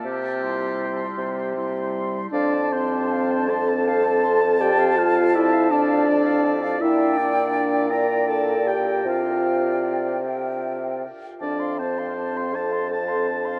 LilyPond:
<<
  \new Staff \with { instrumentName = "Flute" } { \time 6/8 \key f \major \tempo 4. = 53 r8 c'''4. c'''4 | a''2.~ | a''2. | g''4. g''4. |
g''4. g''4 r8 | a''16 c'''16 a''16 c'''16 a''16 c'''16 a''16 c'''16 a''16 c'''16 a''16 c'''16 | }
  \new Staff \with { instrumentName = "Clarinet" } { \time 6/8 \key f \major r8 e'4. e'4 | f''16 a''16 c'''16 a''16 f''16 a''16 c'''16 a''16 f''16 a''16 c'''16 a''16 | d''16 f''16 a''16 f''16 d''16 f''16 a''16 f''16 d''16 f''16 a''16 f''16 | d''4. d''4. |
c''8. d''8. e''4 r8 | c''16 f''16 c''16 f''16 c''16 f''16 c''16 f''16 c''16 f''16 c''16 f''16 | }
  \new Staff \with { instrumentName = "Oboe" } { \time 6/8 \key f \major g'4. r4. | d''8 c''4 a''8 a''4 | g''8 f''8 e''8 d''4. | e''8 d''4 bes''8 a''8 g''8 |
f''4. r4. | d''8 c''4 a''8 a''4 | }
  \new Staff \with { instrumentName = "French horn" } { \time 6/8 \key f \major r8 g4. g4 | d'8 c'4 a'8 a'4 | g'8 f'8 e'8 d'4. | e'8 d'4 bes'8 a'8 g'8 |
f'4. r4. | d'8 c'4 a'8 a'4 | }
  \new Staff \with { instrumentName = "Bassoon" } { \clef bass \time 6/8 \key f \major c4. c4. | f,2.~ | f,2. | bes,2. |
c2~ c8 r8 | f,2. | }
>>